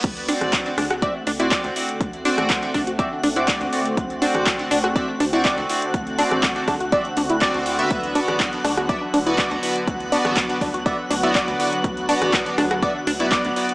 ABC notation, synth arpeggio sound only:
X:1
M:4/4
L:1/16
Q:1/4=122
K:Dmix
V:1 name="Synth arpeggio sound"
z2 D z3 D F d z D E d z3 | z2 D z3 D F d z D E d z3 | z2 D z3 D F d z D E d z3 | z2 D z3 D F d z D E d z3 |
z2 D z3 D F d z D E d z3 | z2 D z3 D F d z D E d z3 | z2 D z3 D F d z D E d z3 |]